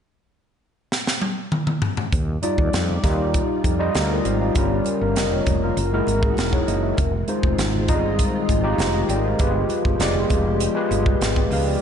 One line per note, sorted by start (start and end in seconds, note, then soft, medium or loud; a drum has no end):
0.92 snare medium
1.07 snare medium
1.22 high tom medium
1.52 mid tom medium
1.67 mid tom medium
1.82 floor tom loud
1.97 floor tom loud
2.12 2.37 D#2 loud
2.12 5.73 G3 medium
2.12 4.53 D#4 medium
2.12 5.73 F4 medium
2.12 4.53 D5 medium
2.12 kick loud
2.12 closed hi-hat medium
2.12 muted conga soft
2.12 low conga medium
2.42 2.84 G3 medium
2.42 2.84 D#4 medium
2.42 2.84 F4 medium
2.42 2.85 D5 medium
2.42 closed hi-hat medium
2.42 muted conga soft
2.42 high conga medium
2.58 2.70 D#2 loud
2.58 kick medium
2.73 2.98 F2 medium
2.73 snare loud
2.73 closed hi-hat medium
2.73 muted conga soft
2.73 high conga medium
2.89 low conga medium
3.03 3.40 D#2 medium
3.03 3.55 G3 medium
3.03 3.56 D#4 medium
3.03 3.56 F4 medium
3.03 3.56 G4 loud
3.03 kick medium
3.03 snare soft
3.03 closed hi-hat medium
3.03 high conga medium
3.03 low conga medium
3.34 kick medium
3.34 closed hi-hat medium
3.34 muted conga soft
3.64 3.88 F2 medium
3.64 kick medium
3.64 closed hi-hat medium
3.64 muted conga soft
3.64 high conga medium
3.79 4.31 G3 medium
3.79 4.31 D#4 medium
3.79 4.31 F4 medium
3.79 3.95 D#5 loud
3.95 4.19 D2 loud
3.95 4.10 G4 medium
3.95 4.09 D5 medium
3.95 snare loud
3.95 closed hi-hat medium
3.95 high conga medium
4.10 4.25 A#4 soft
4.10 4.24 D#5 medium
4.25 4.49 G#1 medium
4.25 4.40 C5 medium
4.25 4.40 F5 medium
4.25 closed hi-hat medium
4.25 high conga soft
4.41 4.70 D5 soft
4.41 4.69 G5 medium
4.55 4.80 G1 loud
4.55 5.76 C#3 medium
4.55 4.97 G3 medium
4.55 6.96 A#3 medium
4.55 4.98 C#4 medium
4.55 4.87 F4 medium
4.55 4.87 A#4 medium
4.55 kick loud
4.55 closed hi-hat medium
4.55 low conga medium
4.85 closed hi-hat medium
4.85 muted conga soft
4.85 high conga medium
5.01 5.16 G1 medium
5.01 5.16 F4 soft
5.01 5.16 A#4 medium
5.16 5.40 F1 medium
5.16 5.31 A#4 medium
5.16 5.31 D#5 medium
5.16 snare loud
5.16 closed hi-hat medium
5.16 high conga medium
5.32 5.61 G4 medium
5.32 5.61 C#5 medium
5.32 low conga medium
5.46 5.71 F1 medium
5.46 kick medium
5.46 closed hi-hat medium
5.46 high conga medium
5.46 low conga medium
5.64 5.92 F4 medium
5.64 5.91 A#4 medium
5.77 6.01 F#1 medium
5.77 6.97 E3 medium
5.77 11.78 G#3 medium
5.77 6.97 F#4 medium
5.77 closed hi-hat medium
5.93 6.34 G#3 medium
5.93 6.08 E4 medium
5.93 6.08 F#4 medium
5.93 6.08 A#4 medium
6.07 6.31 G#1 medium
6.07 closed hi-hat medium
6.07 high conga medium
6.23 6.37 D#4 medium
6.23 6.37 G#4 medium
6.23 kick medium
6.37 6.62 E1 medium
6.37 6.52 E4 medium
6.37 6.52 A#4 medium
6.37 snare loud
6.37 closed hi-hat medium
6.37 muted conga soft
6.37 high conga medium
6.53 6.67 G#4 medium
6.53 6.67 C#5 medium
6.53 kick medium
6.67 6.92 F#1 medium
6.67 6.82 A#4 medium
6.67 6.82 D#5 medium
6.67 closed hi-hat medium
6.67 high conga soft
6.83 7.12 A#4 soft
6.83 7.11 E5 medium
6.97 7.22 F1 loud
6.97 9.38 D#3 medium
6.97 9.38 C4 medium
6.97 9.38 F4 medium
6.97 kick loud
6.97 closed hi-hat medium
6.97 muted conga soft
6.97 low conga medium
7.28 7.69 G#3 medium
7.28 7.70 D#4 medium
7.28 7.70 F4 medium
7.28 7.70 C5 medium
7.28 closed hi-hat medium
7.28 high conga medium
7.43 7.55 F1 medium
7.43 kick medium
7.58 7.89 G#1 medium
7.58 snare loud
7.58 closed hi-hat medium
7.58 muted conga soft
7.58 high conga medium
7.74 low conga medium
7.88 8.25 G1 medium
7.88 7.95 G3 medium
7.88 8.40 D#4 medium
7.88 8.40 F4 medium
7.88 8.41 D#5 medium
7.88 kick medium
7.88 closed hi-hat medium
7.88 high conga medium
7.88 low conga medium
7.95 8.43 G#3 medium
8.19 kick medium
8.19 closed hi-hat medium
8.19 muted conga soft
8.49 8.73 G#1 medium
8.49 kick medium
8.49 closed hi-hat medium
8.49 high conga medium
8.63 9.15 G#3 medium
8.63 9.16 D#4 medium
8.63 9.16 F4 medium
8.63 9.16 G4 loud
8.78 9.03 F1 loud
8.78 snare loud
8.78 closed hi-hat medium
8.78 muted conga soft
8.78 high conga medium
8.94 9.09 A#4 medium
8.94 9.09 D#5 medium
9.09 9.33 G#1 medium
9.09 9.24 D5 medium
9.09 9.24 G5 medium
9.09 closed hi-hat medium
9.09 muted conga soft
9.09 high conga soft
9.24 9.54 C5 soft
9.24 9.53 F5 medium
9.38 9.64 G1 loud
9.38 11.79 F3 medium
9.38 9.81 G#3 medium
9.38 11.79 B3 medium
9.38 9.81 F4 medium
9.38 11.79 G4 medium
9.38 9.81 G4 medium
9.38 9.82 B4 loud
9.38 kick loud
9.38 closed hi-hat medium
9.38 muted conga soft
9.38 low conga medium
9.69 closed hi-hat medium
9.69 high conga medium
9.85 9.97 G1 medium
9.85 kick medium
9.99 10.24 F1 medium
9.99 10.52 G#3 medium
9.99 10.52 F4 medium
9.99 10.52 G4 medium
9.99 10.53 D5 medium
9.99 snare medium
9.99 closed hi-hat medium
9.99 muted conga soft
9.99 high conga medium
10.14 low conga medium
10.30 10.67 F1 medium
10.30 kick medium
10.30 closed hi-hat medium
10.30 muted conga soft
10.30 high conga medium
10.30 low conga medium
10.60 closed hi-hat medium
10.60 muted conga soft
10.75 11.17 G#3 medium
10.75 11.17 F4 medium
10.75 10.91 G4 medium
10.75 10.91 B4 loud
10.91 11.15 G1 medium
10.91 closed hi-hat medium
10.91 muted conga soft
10.91 high conga medium
11.06 kick medium
11.21 11.45 G#1 medium
11.21 snare loud
11.21 closed hi-hat medium
11.21 muted conga soft
11.21 high conga medium
11.36 11.52 D5 soft
11.36 11.51 G5 medium
11.36 kick medium
11.51 11.75 C#2 medium
11.51 11.67 B4 medium
11.51 11.67 F5 medium
11.51 open hi-hat medium
11.51 muted conga soft
11.51 high conga soft
11.68 11.81 G#4 soft
11.68 11.81 D5 medium